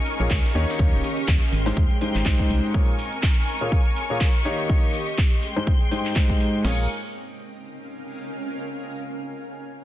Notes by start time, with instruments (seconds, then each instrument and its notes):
Already playing: ambient pad C#4 A#4 F5, string section A#4 G#5 C#6
0.06 closed hi-hat, open hi-hat
0.20 fm bass A#1, grand piano A#2 A#3 F4 G#4 C#5, closed hi-hat
0.30 fm bass C#2, kick, snare, clap, closed hi-hat
0.44 snare, closed hi-hat
0.55 fm bass D#2, grand piano D#3 A#3 D#4 G4 C#5, string section G4 D#5, closed hi-hat, open hi-hat
0.69 snare, closed hi-hat
0.79 fm bass D#2, grand piano D#3 A#3 D#4 G4 C#5, kick, closed hi-hat
0.88 ambient pad G5
0.93 fm bass D#1
0.99 ambient pad D#5
1.04 closed hi-hat, open hi-hat
1.17 closed hi-hat
1.28 fm bass D#2, kick, snare, clap, closed hi-hat
1.52 fm bass G#1, string section G#3 G5 C6, ambient pad C4, closed hi-hat, open hi-hat
1.66 grand piano G#2 G#3 D#4 G4 C5, snare, closed hi-hat
1.77 fm bass D#2, kick, closed hi-hat
1.91 closed hi-hat
2.01 grand piano G#2 G#3 D#4 G4 C5, ambient pad G#3, closed hi-hat, open hi-hat
2.15 fm bass G#1, clap, closed hi-hat
2.25 fm bass C2, grand piano G#2 G#3 D#4 G4 C5, kick, snare, clap, closed hi-hat
2.39 kick, closed hi-hat
2.50 fm bass C2, closed hi-hat, open hi-hat
2.64 closed hi-hat
2.74 grand piano A#2 A#3 F4 G#4 C#5, ambient pad C#4, string section A#4 G#5 C#6, kick, closed hi-hat
2.81 ambient pad A#4
2.99 open hi-hat
3.12 closed hi-hat
3.23 kick, clap, closed hi-hat
3.47 open hi-hat
3.52 ambient pad F5
3.61 grand piano A#2 A#3 F4 G#4 C#5, closed hi-hat
3.72 kick, closed hi-hat
3.86 closed hi-hat
3.96 open hi-hat
4.10 grand piano A#2 A#3 F4 G#4 C#5, closed hi-hat
4.21 kick, clap, closed hi-hat
4.34 closed hi-hat
4.45 grand piano D#3 A#3 D#4 G4 C#5, string section G4 D#5, open hi-hat
4.59 closed hi-hat
4.69 grand piano D#3 A#3 D#4 G4 C#5, kick, closed hi-hat
4.90 ambient pad D#5 G5
4.94 open hi-hat
5.08 closed hi-hat
5.18 kick, clap, closed hi-hat
5.43 string section G#3 G5 C6, ambient pad C4, open hi-hat
5.56 grand piano G#2 G#3 D#4 G4 C5, closed hi-hat
5.67 kick, closed hi-hat
5.81 closed hi-hat
5.91 grand piano G#2 G#3 D#4 G4 C5, open hi-hat
6.05 clap, closed hi-hat
6.16 grand piano G#2 G#3 D#4 G4 C5, kick, clap, closed hi-hat
6.30 kick, closed hi-hat
6.40 open hi-hat
6.54 closed hi-hat
6.64 fm bass A#1, grand piano A#3 F4 G#4 C#5, ambient pad C#4, string section A#4 G#5 C#6, snare, crash
6.73 ambient pad A#4
6.81 ambient pad F5
6.87 ambient pad G#5